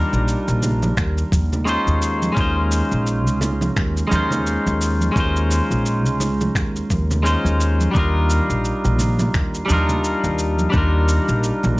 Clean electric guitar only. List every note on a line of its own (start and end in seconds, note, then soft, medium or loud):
0.00 1.62 G3 medium
0.00 1.63 D4 medium
0.00 1.64 D#4 medium
0.00 1.65 F4 medium
0.00 1.66 A#4 medium
1.65 2.31 G#3 medium
1.65 2.33 C#4 medium
1.65 2.33 D#4 medium
1.65 2.34 F4 medium
1.69 2.34 C5 medium
2.32 4.06 G#3 medium
2.32 4.07 C#4 medium
2.32 4.08 D#4 medium
2.39 4.09 F4 medium
2.39 4.10 C5 medium
4.07 5.11 G#3 medium
4.07 5.11 C#4 medium
4.07 5.12 D#4 medium
4.13 5.13 F4 medium
4.13 5.15 C5 medium
5.12 7.20 G#3 medium
5.12 7.21 C#4 medium
5.16 7.22 D#4 medium
5.16 7.23 F4 medium
5.16 7.24 C5 medium
7.23 7.90 G#3 medium
7.23 7.91 C#4 medium
7.23 7.92 D#4 medium
7.23 7.92 F4 medium
7.27 7.93 C5 medium
7.91 9.64 G3 medium
7.91 9.65 D4 medium
7.95 9.66 D#4 medium
7.95 9.67 F4 medium
7.95 9.68 A#4 medium
9.66 10.69 G3 medium
9.66 10.70 D4 medium
9.70 10.71 D#4 medium
9.70 10.72 F4 medium
9.70 10.73 A#4 medium
10.70 11.80 G3 medium
10.70 11.80 D4 medium
10.74 11.80 D#4 medium
10.74 11.80 F4 medium
10.74 11.80 A#4 medium